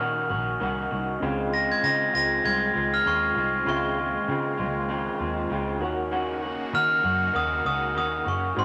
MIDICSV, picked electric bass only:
0, 0, Header, 1, 2, 480
1, 0, Start_track
1, 0, Tempo, 612245
1, 958, Time_signature, 4, 2, 24, 8
1, 6780, End_track
2, 0, Start_track
2, 0, Title_t, "Picked electric bass"
2, 0, Program_c, 0, 34
2, 0, Note_on_c, 0, 46, 87
2, 236, Note_on_c, 0, 34, 88
2, 248, Note_off_c, 0, 46, 0
2, 429, Note_off_c, 0, 34, 0
2, 479, Note_on_c, 0, 36, 92
2, 671, Note_off_c, 0, 36, 0
2, 721, Note_on_c, 0, 36, 91
2, 912, Note_off_c, 0, 36, 0
2, 959, Note_on_c, 0, 37, 108
2, 1343, Note_off_c, 0, 37, 0
2, 1438, Note_on_c, 0, 49, 102
2, 1630, Note_off_c, 0, 49, 0
2, 1680, Note_on_c, 0, 37, 84
2, 1871, Note_off_c, 0, 37, 0
2, 1919, Note_on_c, 0, 36, 101
2, 2111, Note_off_c, 0, 36, 0
2, 2159, Note_on_c, 0, 37, 85
2, 2351, Note_off_c, 0, 37, 0
2, 2400, Note_on_c, 0, 39, 97
2, 2591, Note_off_c, 0, 39, 0
2, 2638, Note_on_c, 0, 36, 92
2, 2830, Note_off_c, 0, 36, 0
2, 2874, Note_on_c, 0, 37, 114
2, 3260, Note_off_c, 0, 37, 0
2, 3358, Note_on_c, 0, 49, 99
2, 3599, Note_on_c, 0, 37, 84
2, 3611, Note_off_c, 0, 49, 0
2, 3983, Note_off_c, 0, 37, 0
2, 4079, Note_on_c, 0, 39, 81
2, 4271, Note_off_c, 0, 39, 0
2, 4320, Note_on_c, 0, 37, 107
2, 4553, Note_off_c, 0, 37, 0
2, 4553, Note_on_c, 0, 39, 106
2, 5131, Note_off_c, 0, 39, 0
2, 5280, Note_on_c, 0, 51, 108
2, 5471, Note_off_c, 0, 51, 0
2, 5518, Note_on_c, 0, 42, 90
2, 5710, Note_off_c, 0, 42, 0
2, 5761, Note_on_c, 0, 39, 97
2, 5952, Note_off_c, 0, 39, 0
2, 5998, Note_on_c, 0, 37, 92
2, 6238, Note_off_c, 0, 37, 0
2, 6238, Note_on_c, 0, 39, 102
2, 6430, Note_off_c, 0, 39, 0
2, 6477, Note_on_c, 0, 30, 94
2, 6670, Note_off_c, 0, 30, 0
2, 6719, Note_on_c, 0, 32, 112
2, 6780, Note_off_c, 0, 32, 0
2, 6780, End_track
0, 0, End_of_file